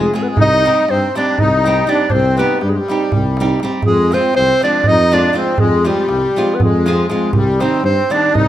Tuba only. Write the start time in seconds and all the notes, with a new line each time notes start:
0.37 C2
0.89 G2
1.40 C2
2.11 C2
2.62 G2
3.13 C2
3.85 F2
4.36 C2
4.87 F2
5.58 F2
6.09 C2
6.60 F2
7.32 C2
7.83 G2
8.34 C2